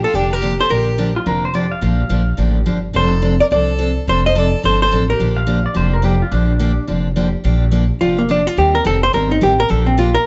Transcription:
0.04 F4 A4
0.13 F1 D3 F3 A#3 D4 G4
0.32 G4 A#4
0.42 D3 F3 A#3 D4 G4
0.60 A4 C5
0.69 A#1 D3 F3 A#3 D4 G4 A#4
0.98 D3 F3 A#3 D4 G4
1.16 F4
1.26 F1 D3 F3 A#3 D4 G4 A#4
1.45 C5
1.54 D3 F3 A#3 D4 G4 D5
1.72 F5
1.81 A#1 D3 F3 A#3 D4 G4 F5
2.09 A#1 D3 F3 A#3 D4 G4
2.37 A1 D3 F3 A#3 D4 G4
2.66 G1 D3 F3 A#3 D4 G4
2.93 F1 F3 C4 D4 A4 C5
3.22 F3 C4 D4 A4
3.40 A#4 D5
3.51 C2 F3 C4 D4 A4 D5
3.78 F3 C4 D4 A4
4.07 F1 F3 C4 D4 A4 C5
4.26 C5 D#5
4.35 F3 C4 D4 A4 D5
4.63 G1 F3 C4 D4 A4 C5
4.82 A4 C5
4.91 A1 F3 C4 D4 A4
5.10 G4 A#4
5.20 A#1 D3 F3 A#3 D4 G4
5.36 F5
5.46 D3 F3 A#3 D4 G4
5.66 D5
5.74 F1 D3 F3 A#3 D4 G4 C5
5.93 A#4
6.02 D3 F3 A#3 D4 G4
6.22 F4
6.31 A#1 D3 F3 A#3 D4 G4
6.59 D3 F3 A#3 D4 G4
6.87 F1 D3 F3 A#3 D4 G4
7.16 D3 F3 A#3 D4 G4
7.44 A#1 D3 F3 A#3 D4 G4
7.71 D3 F3 A#3 D4 G4
8.01 F1 D3 F3 A#3 D4 F4 G4
8.18 A#3
8.29 D3 F3 A#3 D4 G4
8.47 F4
8.57 D#2 D#3 G3 C4 G4 A#4
8.75 A#4
8.85 F1 D#3 G3 C4 G4 A4 A#4
9.03 C5
9.13 G1 D#3 G3 C4 G4 A#4
9.31 D#4
9.41 A1 D#3 G3 C4 G4 A#4
9.60 A#4
9.68 A#1 D3 F3 A#3 D4 G4 A4
9.86 C4
9.97 D3 F3 A#3 D4 F4 G4
10.15 A#4

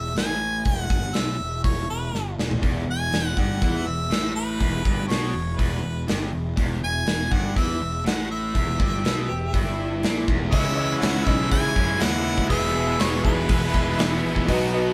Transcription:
Already playing: E1 E5
0.15 A1 G#5, snare, open hi-hat
0.65 E1 F#5, kick, open hi-hat
0.90 G1, kick
1.14 B1 E5, snare, open hi-hat
1.40 E1
1.64 E1 C#5, kick, open hi-hat
1.89 E1 B4
2.13 G1, snare
2.38 E1, snare
2.51 floor tom
2.62 E1 E2, kick, open hi-hat
2.86 E1 E2
2.91 G#5
3.11 E1 E2, snare, open hi-hat
3.27 F#5
3.36 G1 G2, kick
3.40 F#5
3.61 E2 E3, kick, open hi-hat
3.85 E1 E2 E5
4.10 A1 A2, snare, open hi-hat
4.36 B4
4.59 E1 E2, kick, open hi-hat
4.84 G1 G2, kick
5.08 B1 B2 C#5, snare, open hi-hat
5.34 E1 E2
5.58 E1 E2 B4, kick, open hi-hat
5.83 E1 E2
6.07 G1 G2, snare, open hi-hat
6.32 E1 E2
6.56 E1 E2, kick, open hi-hat
6.81 E1 E2 G#5
7.06 E1 E2, snare, open hi-hat
7.31 G1 G2 F#5, kick
7.55 E2 E3 E5, kick, open hi-hat
7.80 E1 E2
8.04 A1 A2 F#5, snare, open hi-hat
8.31 E5
8.54 E1 E2, kick, open hi-hat
8.80 G1 G2, kick
9.04 B1 B2 B4, snare, open hi-hat
9.28 E1 E2 G4
9.53 G1 G2 E4, kick, open hi-hat
9.79 E4
10.03 A#1 A#2, snare, open hi-hat
10.22 A3 B3
10.27 E1 E2 C4 D4, kick
10.33 E4 F4
10.39 G4 A4
10.45 B4 C5
10.50 C#2 C#3 E3 G#3 C#4 E4 G#4 C#5 D5 D#5 E5, kick, open hi-hat
10.55 E4
10.75 G#3 C#4 E4 C#5 D#5
11.00 C#2 C#3 E3 G#3 C#4 E4 F#5, snare, clap, open hi-hat
11.25 B1 C#4 E4 C#5 D#5 E5, kick
11.29 G#3
11.51 C#3 E3 G#3 C#4 E4 G#5, kick, open hi-hat
11.75 F#2 G#3 C#4 E4, kick
11.99 D#2 E3 G#3 C#4 E4 F#5, snare, clap, open hi-hat
12.38 kick
12.49 E1 E2 B2 E3 G#3 B3 E4 G#4 B4 E5, kick, open hi-hat
12.73 E1 G#3 B3 G#4 B4 E5
12.77 E3
12.98 E1 E2 B2 E3 G#3 B3 G#4 C#5, snare, clap, open hi-hat
13.23 E1 G#3 B3 G#4 B4 E5, kick
13.28 E3
13.49 E1 E2 B2 E3 G#3 B3 E4, kick, open hi-hat
13.73 E1 E3 G#3 B3 G#4, kick
13.97 E1 E3 G#3 B3 G#4, snare, clap, open hi-hat
14.24 A#1
14.36 kick
14.47 B1 B2 F#3 B3 D#4 F#4 B4 D#5, kick, open hi-hat
14.72 B3 D#4 F#4 B4 D#5

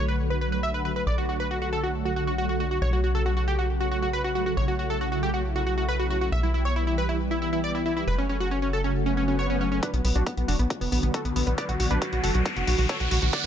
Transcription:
Already playing: B1
0.08 D3 F#3 A3 F#4 B4
0.19 D3 F#3 A3 F#4
0.30 B4
0.41 D3 F#3 A3 F#4 B4
0.52 B4
0.63 D3 F#3 A3 F#4 E5
0.74 D3 F#3 A3 F#4 B4
0.85 B4
0.96 D3 F#3 A3 F#4 B4
1.07 B1 D3 F#3 A3 F#4 D5
1.18 F#4
1.29 D3 F#3 A3 F#4
1.40 B4
1.51 D3 F#3 A3 F#4
1.62 D3 F#3 A3 F#4
1.73 A4
1.84 D3 F#3 A3 F#4
1.94 D3 F#3 A3 F#4
2.05 F#4
2.16 D3 F#3 A3 F#4
2.27 F#4
2.38 D3 F#3 A3 F#4
2.49 D3 F#3 A3 F#4
2.60 F#4
2.71 D3 F#3 A3 F#4
2.82 B1 C#3 F#3 A3 F#4 C#5
2.93 F#4
3.04 C#3 F#3 A3 F#4
3.15 A4
3.26 C#3 F#3 A3 F#4
3.37 C#3 F#3 A3 F#4
3.48 G4
3.59 C#3 F#3 A3 F#4
3.70 C#3 F#3 A3 F#4
3.81 F#4
3.92 C#3 F#3 A3 F#4
4.02 F#4
4.13 C#3 F#3 A3 F#4 B4
4.24 C#3 F#3 A3 F#4
4.35 F#4
4.46 C#3 F#3 A3 F#4
4.57 B1 C#3 F#3 A3 E4 C#5
4.68 F#4
4.79 C#3 F#3 A3 E4 F#4
4.90 A4
5.01 C#3 F#3 A3 E4 F#4
5.12 C#3 F#3 A3 E4 F#4
5.23 G4
5.34 C#3 F#3 A3 E4 F#4
5.45 C#3 F#3 A3 E4
5.56 F#4
5.67 C#3 F#3 A3 E4 F#4
5.78 F#4
5.88 C#3 F#3 A3 E4 B4
5.99 C#3 F#3 A3 E4 F#4
6.10 F#4
6.21 C#3 F#3 A3 E4 F#4
6.32 B1 E3 G3 B3 G4 E5
6.43 E4
6.54 E3 G3 B3 E4 G4
6.65 C#5
6.76 E3 G3 B3 E4 G4
6.87 E3 G3 B3 E4 G4
6.98 B4
7.09 E3 G3 B3 E4 G4
7.20 E3 G3 B3 G4
7.31 E4
7.42 E3 G3 B3 E4 G4
7.53 E4
7.64 E3 G3 B3 G4 D5
7.75 E3 G3 B3 E4 G4
7.86 E4
7.97 E3 G3 B3 E4 G4
8.08 F#1 C#3 F#3 A3 F#4 B4
8.18 C#4
8.29 C#3 F#3 A3 C#4 F#4
8.40 F#4
8.51 C#3 F#3 A3 C#4 F#4
8.62 C#3 F#3 A3 C#4 F#4
8.73 A4
8.84 C#3 F#3 A3 C#4 F#4
8.95 C#3 F#3 A3 F#4, swell
9.06 C#4
9.17 C#3 F#3 A3 C#4 F#4
9.28 C#4
9.39 C#3 F#3 A3 F#4 C#5
9.50 C#3 F#3 A3 C#4 F#4
9.61 C#4
9.72 C#3 F#3 A3 C#4 F#4
9.83 D3 F#3 B3 D4 F#4 B4, kick, closed hi-hat, riser
9.94 B1 B3, closed hi-hat
10.05 B1 D3 F#3 B3 F#4, open hi-hat
10.16 B1 D4 F#4, closed hi-hat
10.26 D3 F#3 B3 F#4, kick, closed hi-hat
10.37 B1 D3 F#3 B3 F#4, closed hi-hat
10.48 F#1 D4 F#4, open hi-hat
10.59 B1 D3 F#3 B3 F#4, closed hi-hat
10.70 D3 F#3 B3 F#4, kick, closed hi-hat
10.81 F#1 B3, open hi-hat
10.92 B1 D3 F#3 B3 F#4, open hi-hat
11.03 B1 B3, closed hi-hat
11.14 D3 F#3 B3 F#4 A4, kick, closed hi-hat
11.25 B1 D3 F#3 B3 F#4, closed hi-hat
11.36 B1 B3, open hi-hat
11.47 B1 D3 F#3 B3 F#4, closed hi-hat
11.58 D3 F#3 B3 F#4 B4 D5, kick, closed hi-hat
11.69 B1 F#4, closed hi-hat
11.80 B1 D3 F#3 B3 F#4, open hi-hat
11.91 B1 D4 B4, closed hi-hat
12.02 D3 F#3 B3 F#4, kick, closed hi-hat
12.13 B1 D3 F#3 B3 F#4, closed hi-hat
12.24 F#1 F#4 A4, open hi-hat
12.35 B1 D3 F#3 B3 F#4, closed hi-hat
12.46 D3 F#3 B3 F#4, kick, closed hi-hat
12.56 F#1 F#4, closed hi-hat
12.67 B1 D3 F#3 B3 F#4, open hi-hat
12.78 B1 F#4, open hi-hat
12.89 D3 F#3 B3 F#4 A4 C#5, kick, closed hi-hat
13.00 B1 D3 F#3 B3 F#4, closed hi-hat
13.11 B1 F#4, open hi-hat
13.22 B1 D3 F#3 B3 F#4, closed hi-hat
13.33 D3 F#3 B3 F#4 D5 F#5, kick, closed hi-hat

